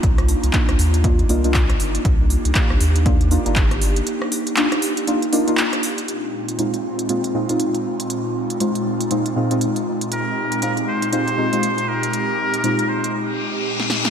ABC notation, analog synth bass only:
X:1
M:4/4
L:1/16
Q:"Swing 16ths" 1/4=119
K:Bbmix
V:1 name="Analog synth bass" clef=bass
C,,2 z C,, z C,, E,,3 z C,,3 z G,,, z | C,,2 z C,, z C,, E,,4 z G,,,4 z | z16 | z16 |
z16 | z16 | z16 |]